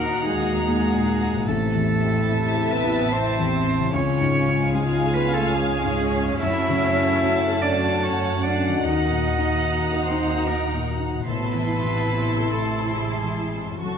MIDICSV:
0, 0, Header, 1, 10, 480
1, 0, Start_track
1, 0, Tempo, 816327
1, 875, Time_signature, 3, 2, 24, 8
1, 3273, Tempo, 855920
1, 3753, Tempo, 811908
1, 7113, Tempo, 834492
1, 7593, Tempo, 892857
1, 8152, End_track
2, 0, Start_track
2, 0, Title_t, "Violin section"
2, 0, Program_c, 0, 48
2, 0, Note_on_c, 0, 82, 68
2, 847, Note_off_c, 0, 82, 0
2, 872, Note_on_c, 0, 81, 75
2, 2302, Note_off_c, 0, 81, 0
2, 2332, Note_on_c, 0, 80, 74
2, 3731, Note_off_c, 0, 80, 0
2, 3752, Note_on_c, 0, 81, 74
2, 5161, Note_off_c, 0, 81, 0
2, 5183, Note_on_c, 0, 82, 61
2, 6603, Note_off_c, 0, 82, 0
2, 6630, Note_on_c, 0, 84, 48
2, 8048, Note_off_c, 0, 84, 0
2, 8074, Note_on_c, 0, 85, 34
2, 8152, Note_off_c, 0, 85, 0
2, 8152, End_track
3, 0, Start_track
3, 0, Title_t, "Violin section"
3, 0, Program_c, 1, 48
3, 0, Note_on_c, 1, 78, 65
3, 850, Note_off_c, 1, 78, 0
3, 874, Note_on_c, 1, 76, 78
3, 2303, Note_off_c, 1, 76, 0
3, 2326, Note_on_c, 1, 77, 77
3, 3728, Note_off_c, 1, 77, 0
3, 3756, Note_on_c, 1, 78, 80
3, 6606, Note_off_c, 1, 78, 0
3, 6632, Note_on_c, 1, 81, 46
3, 8049, Note_off_c, 1, 81, 0
3, 8073, Note_on_c, 1, 81, 36
3, 8152, Note_off_c, 1, 81, 0
3, 8152, End_track
4, 0, Start_track
4, 0, Title_t, "Cello"
4, 0, Program_c, 2, 42
4, 0, Note_on_c, 2, 70, 79
4, 152, Note_off_c, 2, 70, 0
4, 156, Note_on_c, 2, 68, 81
4, 390, Note_off_c, 2, 68, 0
4, 403, Note_on_c, 2, 68, 86
4, 869, Note_on_c, 2, 69, 80
4, 878, Note_off_c, 2, 68, 0
4, 1594, Note_on_c, 2, 71, 83
4, 1603, Note_off_c, 2, 69, 0
4, 1836, Note_on_c, 2, 72, 88
4, 1845, Note_off_c, 2, 71, 0
4, 2315, Note_off_c, 2, 72, 0
4, 2319, Note_on_c, 2, 73, 82
4, 2781, Note_off_c, 2, 73, 0
4, 2785, Note_on_c, 2, 68, 83
4, 3021, Note_on_c, 2, 71, 96
4, 3029, Note_off_c, 2, 68, 0
4, 3137, Note_on_c, 2, 69, 84
4, 3146, Note_off_c, 2, 71, 0
4, 3257, Note_on_c, 2, 68, 91
4, 3266, Note_off_c, 2, 69, 0
4, 3745, Note_off_c, 2, 68, 0
4, 3749, Note_on_c, 2, 76, 112
4, 4461, Note_on_c, 2, 74, 83
4, 4470, Note_off_c, 2, 76, 0
4, 4705, Note_on_c, 2, 73, 81
4, 4713, Note_off_c, 2, 74, 0
4, 4937, Note_on_c, 2, 74, 70
4, 4946, Note_off_c, 2, 73, 0
4, 5179, Note_on_c, 2, 75, 82
4, 5188, Note_off_c, 2, 74, 0
4, 5900, Note_off_c, 2, 75, 0
4, 5904, Note_on_c, 2, 72, 74
4, 6144, Note_on_c, 2, 70, 58
4, 6153, Note_off_c, 2, 72, 0
4, 6385, Note_off_c, 2, 70, 0
4, 6619, Note_on_c, 2, 71, 76
4, 7349, Note_on_c, 2, 69, 53
4, 7357, Note_off_c, 2, 71, 0
4, 7585, Note_on_c, 2, 68, 54
4, 7594, Note_off_c, 2, 69, 0
4, 8062, Note_off_c, 2, 68, 0
4, 8065, Note_on_c, 2, 66, 42
4, 8152, Note_off_c, 2, 66, 0
4, 8152, End_track
5, 0, Start_track
5, 0, Title_t, "Harp"
5, 0, Program_c, 3, 46
5, 0, Note_on_c, 3, 51, 44
5, 0, Note_on_c, 3, 58, 42
5, 0, Note_on_c, 3, 63, 42
5, 0, Note_on_c, 3, 66, 39
5, 770, Note_on_c, 3, 45, 47
5, 795, Note_on_c, 3, 48, 42
5, 822, Note_on_c, 3, 64, 45
5, 840, Note_off_c, 3, 51, 0
5, 848, Note_on_c, 3, 69, 43
5, 854, Note_off_c, 3, 58, 0
5, 868, Note_off_c, 3, 63, 0
5, 880, Note_off_c, 3, 66, 0
5, 2222, Note_on_c, 3, 49, 55
5, 2273, Note_on_c, 3, 65, 48
5, 2293, Note_off_c, 3, 45, 0
5, 2300, Note_on_c, 3, 68, 44
5, 2305, Note_off_c, 3, 48, 0
5, 2319, Note_off_c, 3, 64, 0
5, 2332, Note_off_c, 3, 69, 0
5, 3652, Note_on_c, 3, 42, 50
5, 3676, Note_on_c, 3, 57, 42
5, 3701, Note_on_c, 3, 66, 41
5, 3720, Note_off_c, 3, 49, 0
5, 3727, Note_on_c, 3, 69, 41
5, 3745, Note_off_c, 3, 65, 0
5, 3758, Note_off_c, 3, 68, 0
5, 5082, Note_on_c, 3, 51, 45
5, 5107, Note_on_c, 3, 63, 41
5, 5126, Note_off_c, 3, 66, 0
5, 5133, Note_on_c, 3, 66, 42
5, 5151, Note_off_c, 3, 42, 0
5, 5160, Note_on_c, 3, 70, 41
5, 5163, Note_off_c, 3, 57, 0
5, 5190, Note_off_c, 3, 69, 0
5, 6521, Note_on_c, 3, 45, 38
5, 6549, Note_on_c, 3, 48, 33
5, 6576, Note_on_c, 3, 64, 30
5, 6595, Note_off_c, 3, 51, 0
5, 6608, Note_off_c, 3, 63, 0
5, 6620, Note_off_c, 3, 66, 0
5, 6634, Note_off_c, 3, 70, 0
5, 7974, Note_on_c, 3, 42, 27
5, 7999, Note_on_c, 3, 61, 22
5, 8021, Note_on_c, 3, 66, 22
5, 8040, Note_off_c, 3, 45, 0
5, 8046, Note_on_c, 3, 69, 22
5, 8053, Note_off_c, 3, 48, 0
5, 8065, Note_off_c, 3, 64, 0
5, 8152, Note_off_c, 3, 42, 0
5, 8152, Note_off_c, 3, 61, 0
5, 8152, Note_off_c, 3, 66, 0
5, 8152, Note_off_c, 3, 69, 0
5, 8152, End_track
6, 0, Start_track
6, 0, Title_t, "Viola section"
6, 0, Program_c, 4, 48
6, 0, Note_on_c, 4, 63, 67
6, 854, Note_off_c, 4, 63, 0
6, 870, Note_on_c, 4, 48, 84
6, 2301, Note_off_c, 4, 48, 0
6, 2323, Note_on_c, 4, 61, 79
6, 5159, Note_off_c, 4, 61, 0
6, 5189, Note_on_c, 4, 63, 70
6, 6606, Note_off_c, 4, 63, 0
6, 6631, Note_on_c, 4, 64, 59
6, 8049, Note_off_c, 4, 64, 0
6, 8072, Note_on_c, 4, 66, 36
6, 8152, Note_off_c, 4, 66, 0
6, 8152, End_track
7, 0, Start_track
7, 0, Title_t, "Felt piano"
7, 0, Program_c, 5, 0
7, 0, Control_c, 5, 64, 127
7, 0, Note_on_c, 5, 39, 51
7, 0, Note_on_c, 5, 46, 42
7, 0, Note_on_c, 5, 58, 42
7, 0, Note_on_c, 5, 63, 44
7, 66, Note_on_c, 5, 66, 47
7, 168, Note_off_c, 5, 63, 0
7, 236, Note_on_c, 5, 63, 42
7, 327, Note_off_c, 5, 66, 0
7, 398, Note_off_c, 5, 58, 0
7, 398, Note_on_c, 5, 58, 48
7, 491, Note_off_c, 5, 63, 0
7, 551, Note_off_c, 5, 46, 0
7, 551, Note_on_c, 5, 46, 44
7, 651, Note_off_c, 5, 58, 0
7, 712, Note_on_c, 5, 58, 44
7, 809, Note_off_c, 5, 46, 0
7, 854, Note_off_c, 5, 39, 0
7, 873, Note_on_c, 5, 33, 59
7, 874, Note_off_c, 5, 58, 0
7, 884, Control_c, 5, 64, 0
7, 985, Control_c, 5, 64, 127
7, 1031, Note_on_c, 5, 40, 45
7, 1191, Note_on_c, 5, 60, 47
7, 1292, Note_off_c, 5, 40, 0
7, 1350, Note_on_c, 5, 64, 45
7, 1452, Note_off_c, 5, 60, 0
7, 1507, Note_on_c, 5, 69, 46
7, 1612, Note_off_c, 5, 64, 0
7, 1670, Note_on_c, 5, 64, 46
7, 1772, Note_off_c, 5, 69, 0
7, 1832, Note_on_c, 5, 60, 46
7, 1935, Note_off_c, 5, 64, 0
7, 1997, Note_on_c, 5, 40, 51
7, 2097, Note_off_c, 5, 60, 0
7, 2154, Note_on_c, 5, 60, 45
7, 2258, Note_off_c, 5, 40, 0
7, 2302, Note_off_c, 5, 33, 0
7, 2313, Note_on_c, 5, 37, 62
7, 2320, Note_off_c, 5, 60, 0
7, 2336, Control_c, 5, 64, 0
7, 2435, Control_c, 5, 64, 127
7, 2475, Note_on_c, 5, 44, 48
7, 2635, Note_on_c, 5, 61, 54
7, 2730, Note_off_c, 5, 44, 0
7, 2792, Note_on_c, 5, 65, 54
7, 2887, Note_off_c, 5, 61, 0
7, 2958, Note_on_c, 5, 68, 49
7, 3045, Note_off_c, 5, 65, 0
7, 3111, Note_on_c, 5, 65, 46
7, 3209, Note_off_c, 5, 68, 0
7, 3270, Note_on_c, 5, 61, 50
7, 3366, Note_off_c, 5, 65, 0
7, 3431, Note_on_c, 5, 44, 45
7, 3527, Note_off_c, 5, 61, 0
7, 3592, Note_on_c, 5, 61, 49
7, 3689, Note_off_c, 5, 44, 0
7, 3722, Note_off_c, 5, 37, 0
7, 3751, Note_off_c, 5, 61, 0
7, 3755, Note_on_c, 5, 42, 57
7, 3762, Control_c, 5, 64, 0
7, 3861, Control_c, 5, 64, 127
7, 3914, Note_on_c, 5, 49, 47
7, 4066, Note_on_c, 5, 61, 51
7, 4167, Note_off_c, 5, 49, 0
7, 4226, Note_on_c, 5, 66, 50
7, 4321, Note_off_c, 5, 61, 0
7, 4378, Note_on_c, 5, 69, 51
7, 4481, Note_off_c, 5, 66, 0
7, 4547, Note_on_c, 5, 66, 41
7, 4637, Note_off_c, 5, 69, 0
7, 4695, Note_on_c, 5, 61, 41
7, 4802, Note_off_c, 5, 66, 0
7, 4956, Note_off_c, 5, 61, 0
7, 5022, Note_on_c, 5, 61, 46
7, 5162, Note_off_c, 5, 42, 0
7, 5176, Note_on_c, 5, 39, 51
7, 5182, Note_off_c, 5, 61, 0
7, 5195, Control_c, 5, 64, 0
7, 5278, Control_c, 5, 64, 127
7, 5331, Note_on_c, 5, 46, 38
7, 5501, Note_on_c, 5, 63, 41
7, 5594, Note_off_c, 5, 46, 0
7, 5759, Note_off_c, 5, 63, 0
7, 5819, Note_on_c, 5, 70, 38
7, 5976, Note_on_c, 5, 66, 35
7, 6078, Note_off_c, 5, 70, 0
7, 6138, Note_on_c, 5, 63, 35
7, 6237, Note_off_c, 5, 66, 0
7, 6302, Note_on_c, 5, 46, 36
7, 6398, Note_off_c, 5, 63, 0
7, 6455, Note_on_c, 5, 63, 32
7, 6561, Note_off_c, 5, 46, 0
7, 6599, Note_off_c, 5, 39, 0
7, 6621, Note_off_c, 5, 63, 0
7, 6622, Note_on_c, 5, 45, 41
7, 6638, Control_c, 5, 64, 0
7, 6733, Control_c, 5, 64, 127
7, 6780, Note_on_c, 5, 52, 34
7, 6947, Note_on_c, 5, 48, 35
7, 7042, Note_off_c, 5, 52, 0
7, 7112, Note_on_c, 5, 64, 32
7, 7205, Note_off_c, 5, 48, 0
7, 7270, Note_on_c, 5, 69, 27
7, 7365, Note_off_c, 5, 64, 0
7, 7431, Note_on_c, 5, 64, 28
7, 7526, Note_off_c, 5, 69, 0
7, 7595, Note_on_c, 5, 60, 26
7, 7685, Note_off_c, 5, 64, 0
7, 7749, Note_on_c, 5, 52, 27
7, 7843, Note_off_c, 5, 60, 0
7, 7908, Note_on_c, 5, 60, 24
7, 8004, Note_off_c, 5, 52, 0
7, 8044, Note_off_c, 5, 45, 0
7, 8068, Note_on_c, 5, 42, 30
7, 8070, Note_off_c, 5, 60, 0
7, 8079, Control_c, 5, 64, 0
7, 8152, Note_off_c, 5, 42, 0
7, 8152, End_track
8, 0, Start_track
8, 0, Title_t, "Cello section"
8, 0, Program_c, 6, 48
8, 0, Note_on_c, 6, 58, 65
8, 154, Note_off_c, 6, 58, 0
8, 156, Note_on_c, 6, 56, 63
8, 387, Note_off_c, 6, 56, 0
8, 394, Note_on_c, 6, 56, 77
8, 865, Note_off_c, 6, 56, 0
8, 878, Note_on_c, 6, 57, 65
8, 1602, Note_off_c, 6, 57, 0
8, 1604, Note_on_c, 6, 59, 74
8, 1845, Note_off_c, 6, 59, 0
8, 1845, Note_on_c, 6, 60, 76
8, 2328, Note_off_c, 6, 60, 0
8, 2331, Note_on_c, 6, 61, 70
8, 2799, Note_off_c, 6, 61, 0
8, 2801, Note_on_c, 6, 56, 74
8, 3029, Note_off_c, 6, 56, 0
8, 3034, Note_on_c, 6, 59, 75
8, 3152, Note_off_c, 6, 59, 0
8, 3155, Note_on_c, 6, 57, 69
8, 3274, Note_off_c, 6, 57, 0
8, 3278, Note_on_c, 6, 56, 73
8, 3745, Note_off_c, 6, 56, 0
8, 3757, Note_on_c, 6, 64, 78
8, 4455, Note_off_c, 6, 64, 0
8, 4476, Note_on_c, 6, 62, 68
8, 4708, Note_on_c, 6, 61, 68
8, 4710, Note_off_c, 6, 62, 0
8, 4947, Note_off_c, 6, 61, 0
8, 4958, Note_on_c, 6, 62, 67
8, 5190, Note_off_c, 6, 62, 0
8, 5190, Note_on_c, 6, 63, 66
8, 5893, Note_off_c, 6, 63, 0
8, 5914, Note_on_c, 6, 60, 58
8, 6149, Note_off_c, 6, 60, 0
8, 6152, Note_on_c, 6, 58, 49
8, 6389, Note_off_c, 6, 58, 0
8, 6631, Note_on_c, 6, 59, 57
8, 7328, Note_off_c, 6, 59, 0
8, 7350, Note_on_c, 6, 57, 44
8, 7589, Note_on_c, 6, 56, 48
8, 7592, Note_off_c, 6, 57, 0
8, 8068, Note_off_c, 6, 56, 0
8, 8073, Note_on_c, 6, 54, 34
8, 8152, Note_off_c, 6, 54, 0
8, 8152, End_track
9, 0, Start_track
9, 0, Title_t, "French horn section"
9, 0, Program_c, 7, 60
9, 0, Note_on_c, 7, 58, 66
9, 0, Note_on_c, 7, 66, 64
9, 852, Note_off_c, 7, 66, 0
9, 854, Note_off_c, 7, 58, 0
9, 878, Note_on_c, 7, 48, 67
9, 880, Note_on_c, 7, 64, 70
9, 2305, Note_off_c, 7, 48, 0
9, 2305, Note_off_c, 7, 64, 0
9, 2326, Note_on_c, 7, 65, 76
9, 2327, Note_on_c, 7, 56, 70
9, 3659, Note_off_c, 7, 56, 0
9, 3659, Note_off_c, 7, 65, 0
9, 3755, Note_on_c, 7, 66, 67
9, 3756, Note_on_c, 7, 57, 69
9, 5163, Note_off_c, 7, 57, 0
9, 5181, Note_on_c, 7, 58, 55
9, 6602, Note_off_c, 7, 58, 0
9, 6605, Note_off_c, 7, 66, 0
9, 6635, Note_on_c, 7, 48, 49
9, 6639, Note_on_c, 7, 64, 50
9, 8050, Note_off_c, 7, 48, 0
9, 8071, Note_on_c, 7, 69, 35
9, 8073, Note_on_c, 7, 57, 32
9, 8074, Note_off_c, 7, 64, 0
9, 8152, Note_off_c, 7, 57, 0
9, 8152, Note_off_c, 7, 69, 0
9, 8152, End_track
10, 0, Start_track
10, 0, Title_t, "Double bass section"
10, 0, Program_c, 8, 48
10, 0, Note_on_c, 8, 39, 68
10, 851, Note_off_c, 8, 39, 0
10, 874, Note_on_c, 8, 33, 64
10, 2302, Note_off_c, 8, 33, 0
10, 2330, Note_on_c, 8, 37, 68
10, 3730, Note_off_c, 8, 37, 0
10, 3754, Note_on_c, 8, 42, 71
10, 5162, Note_off_c, 8, 42, 0
10, 5187, Note_on_c, 8, 39, 61
10, 6605, Note_off_c, 8, 39, 0
10, 6627, Note_on_c, 8, 33, 53
10, 8047, Note_off_c, 8, 33, 0
10, 8069, Note_on_c, 8, 30, 36
10, 8152, Note_off_c, 8, 30, 0
10, 8152, End_track
0, 0, End_of_file